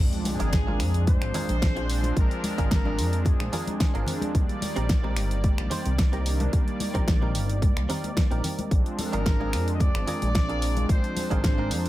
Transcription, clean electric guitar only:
0.39 D4 F4 G#4 A#4
0.67 D4 F4 G#4 A#4
1.34 D4 F4 G#4 A#4
1.76 D4 F4 G#4 C5
2.58 D4 F4 G#4 A#4
2.85 D4 F4 G#4 A#4
3.53 D4 F4 G#4 A#4
3.94 D4 F4 G#4 A#4
4.76 C4 D#4 G4 A#4
5.03 C4 D#4 G4 A#4
5.70 C4 D#4 G4 C5
6.12 C4 D#4 G4 A#4
6.94 C4 D#4 G4 A#4
7.21 C4 D#4 G4 A#4
7.89 C4 D#4 G4 A#4
8.31 C4 D#4 G4 A#4
9.13 D4 F4 G#4 A#4
9.40 D4 F4 G#4 A#4
10.07 D4 F4 G#4 A#4
10.49 D4 F4 G#4 A#4
11.30 D4 F4 G#4 A#4
11.58 D4 F4 G#4 A#4

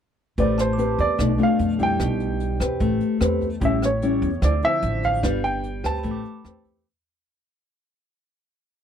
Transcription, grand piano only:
0.40 D5
0.60 C5
1.00 D5
1.43 F5
1.83 G5
3.65 E5
3.85 C#5
4.44 D5
4.65 E5
5.05 F5
5.44 G5
5.86 A5

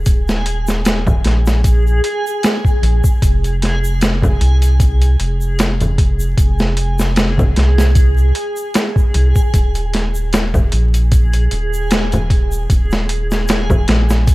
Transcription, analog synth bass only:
0.07 D#1
1.25 A#1
2.82 A#1
3.22 F1
4.40 C2
5.19 F1
6.38 F1
7.57 C2
9.14 C2
9.54 D#1
10.72 A#1
11.52 D#1
12.70 D#1
13.88 A#1

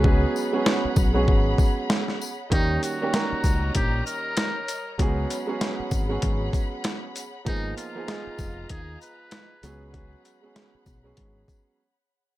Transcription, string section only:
Already playing: G#4 C#5 F#5 B5
2.52 C#5 A#5
5.00 G#4 F#5 B5
7.47 G#4 D#5 F5 A#5
9.62 C#5 F#5 B5

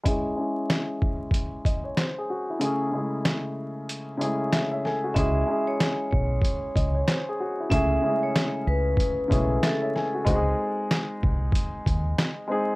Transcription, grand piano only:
0.03 G#3 C#4 E4 G#4
0.36 G#3 C#4 E4 G#4
1.65 D#5
1.84 C#5
1.96 C5
2.18 G#4
2.30 F#4
2.50 E4
2.59 C#3 A3 C#4 E4 G#4
2.91 C#3 G#3 C#4 E4 G#4
2.99 A3
4.17 C#3 G#3 C#4 E4 G#4 C#5
4.25 A3
4.52 E5
4.71 C#5 E5
4.85 A4 G#5
5.04 F#4
5.14 G#3 C#4 E4 G#4
5.47 G#3 C#4 E4 G#4
6.75 D#5
6.95 C#5
7.07 C5
7.29 G#4
7.40 F#4
7.60 E4
7.69 C#3 A3 C#4 E4 G#4
8.02 C#3 G#3 C#4 E4 G#4
8.09 A3
9.28 C#3 G#3 C#4 E4 G#4 C#5
9.35 A3
9.63 E5
9.82 C#5 E5
9.96 A4 G#5
10.15 F#4
10.25 G#3 C4 D#4 F#4
10.35 G#4
12.47 G#3 C4 D#4 G#4

